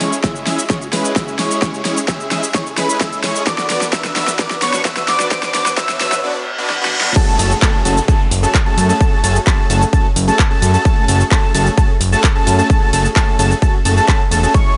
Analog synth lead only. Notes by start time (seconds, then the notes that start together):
0.01 C#6
0.24 E6
0.47 E6
0.70 C#6
0.93 B5
1.16 E6
1.39 C#6
1.62 C#6
1.85 C#6
2.08 E6
2.31 E6
2.54 C#6
2.77 B5
3.01 E6
3.24 C#6
3.47 D6
3.70 D6
3.93 E6
4.16 E6
4.39 D6
4.62 C#6
4.85 E6
5.08 D6
5.31 D6
5.54 D6
5.78 E6
6.01 E6
7.16 A5
7.39 A5
7.62 A5
7.85 A5
8.08 A5
8.43 A5
8.66 A5
8.89 A5
9.01 A5
9.24 A5
9.47 A5
9.70 A5
9.93 A5
10.28 A5
10.51 A5
10.74 A5
10.85 A5
11.08 A5
11.31 A5
11.55 A5
11.78 A5
12.12 A5
12.35 A5
12.58 A5
12.70 A5
12.93 A5
13.16 A5
13.39 A5
13.62 A5
13.85 A5
13.97 A5
14.08 A5
14.31 A5
14.43 A5
14.54 C#6